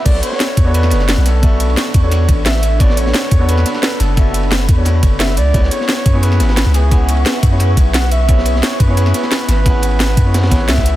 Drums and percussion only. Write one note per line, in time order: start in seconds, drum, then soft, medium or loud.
0.05 kick loud
0.05 closed hi-hat medium
0.05 crash medium
0.05 ride medium
0.15 snare soft
0.22 closed hi-hat loud
0.22 ride medium
0.22 ride bell medium
0.32 snare soft
0.40 snare loud
0.40 closed hi-hat medium
0.40 ride medium
0.57 kick loud
0.57 closed hi-hat loud
0.57 ride medium
0.57 ride bell medium
0.74 closed hi-hat medium
0.74 ride loud
0.83 snare soft
0.90 snare soft
0.90 closed hi-hat medium
0.90 ride medium
0.90 ride bell medium
1.00 snare soft
1.09 snare loud
1.09 closed hi-hat medium
1.09 ride medium
1.26 snare soft
1.26 closed hi-hat medium
1.26 ride medium
1.26 ride bell medium
1.43 kick loud
1.43 closed hi-hat medium
1.43 ride medium
1.60 closed hi-hat loud
1.60 ride medium
1.60 ride bell medium
1.70 ride soft
1.77 snare loud
1.77 closed hi-hat medium
1.77 ride medium
1.94 kick loud
1.94 closed hi-hat loud
1.94 ride medium
1.94 ride bell medium
2.11 snare medium
2.11 closed hi-hat medium
2.11 ride medium
2.29 kick loud
2.29 closed hi-hat medium
2.29 ride medium
2.29 ride bell medium
2.46 snare loud
2.46 closed hi-hat medium
2.46 ride medium
2.56 snare medium
2.63 closed hi-hat medium
2.63 ride medium
2.63 ride bell medium
2.80 kick loud
2.80 closed hi-hat medium
2.80 ride medium
2.89 snare soft
2.97 closed hi-hat medium
2.97 ride medium
2.97 ride bell medium
3.06 snare soft
3.14 snare loud
3.14 closed hi-hat medium
3.14 ride loud
3.31 kick loud
3.31 closed hi-hat medium
3.31 ride medium
3.31 ride bell medium
3.49 closed hi-hat medium
3.49 ride medium
3.58 snare soft
3.66 snare soft
3.66 closed hi-hat medium
3.66 ride medium
3.66 ride bell medium
3.75 snare soft
3.83 snare loud
3.83 closed hi-hat medium
3.83 ride medium
4.00 snare soft
4.00 closed hi-hat medium
4.00 ride medium
4.00 ride bell medium
4.17 kick loud
4.17 closed hi-hat medium
4.17 ride medium
4.34 closed hi-hat medium
4.34 ride medium
4.34 ride bell medium
4.43 ride soft
4.51 snare loud
4.51 closed hi-hat medium
4.51 ride medium
4.69 kick loud
4.69 closed hi-hat medium
4.69 ride medium
4.69 ride bell medium
4.85 snare soft
4.85 closed hi-hat medium
4.85 ride medium
5.03 kick loud
5.03 closed hi-hat medium
5.03 ride medium
5.03 ride bell medium
5.19 snare loud
5.19 closed hi-hat medium
5.19 ride loud
5.28 snare medium
5.37 closed hi-hat medium
5.37 ride medium
5.37 ride bell medium
5.54 kick loud
5.54 closed hi-hat medium
5.54 ride medium
5.63 snare soft
5.71 closed hi-hat medium
5.71 ride medium
5.71 ride bell medium
5.80 snare soft
5.89 snare loud
5.89 closed hi-hat medium
5.89 ride medium
6.06 kick loud
6.06 closed hi-hat medium
6.06 ride medium
6.06 ride bell medium
6.23 closed hi-hat medium
6.23 ride medium
6.32 snare soft
6.40 snare soft
6.40 closed hi-hat medium
6.40 ride medium
6.40 ride bell medium
6.49 snare soft
6.57 snare loud
6.57 closed hi-hat medium
6.57 ride medium
6.74 snare soft
6.74 closed hi-hat medium
6.74 ride medium
6.74 ride bell medium
6.91 kick loud
6.91 closed hi-hat medium
6.91 ride medium
7.09 closed hi-hat medium
7.09 ride medium
7.09 ride bell medium
7.17 ride soft
7.26 snare loud
7.26 closed hi-hat medium
7.26 ride medium
7.43 kick loud
7.43 closed hi-hat medium
7.43 ride medium
7.43 ride bell medium
7.60 snare soft
7.60 closed hi-hat medium
7.60 ride medium
7.77 kick loud
7.77 closed hi-hat medium
7.77 ride medium
7.77 ride bell medium
7.94 snare loud
7.94 closed hi-hat medium
7.94 ride medium
8.03 snare medium
8.11 closed hi-hat medium
8.11 ride medium
8.11 ride bell medium
8.29 kick loud
8.29 closed hi-hat medium
8.29 ride medium
8.38 snare soft
8.45 closed hi-hat loud
8.45 ride medium
8.45 ride bell medium
8.55 snare soft
8.63 snare loud
8.63 closed hi-hat medium
8.63 ride medium
8.80 kick loud
8.80 closed hi-hat loud
8.80 ride medium
8.80 ride bell medium
8.97 closed hi-hat medium
8.97 ride medium
9.06 snare soft
9.14 snare soft
9.14 closed hi-hat medium
9.14 ride medium
9.14 ride bell medium
9.23 snare soft
9.31 snare loud
9.31 closed hi-hat medium
9.31 ride loud
9.49 snare soft
9.49 closed hi-hat medium
9.49 ride medium
9.49 ride bell medium
9.66 kick loud
9.66 closed hi-hat medium
9.66 ride loud
9.82 closed hi-hat loud
9.82 ride medium
9.82 ride bell medium
9.91 ride soft
10.00 snare loud
10.00 closed hi-hat medium
10.00 ride medium
10.17 kick loud
10.17 closed hi-hat loud
10.17 ride medium
10.17 ride bell medium
10.34 snare loud
10.34 snare medium
10.34 closed hi-hat medium
10.34 ride medium
10.43 snare loud
10.43 ride medium
10.51 kick loud
10.51 snare loud
10.51 closed hi-hat loud
10.51 ride medium
10.51 ride bell medium
10.69 snare loud
10.69 closed hi-hat medium
10.69 ride medium
10.78 kick medium
10.78 snare medium
10.78 ride medium
10.86 closed hi-hat medium
10.86 ride medium
10.86 ride bell medium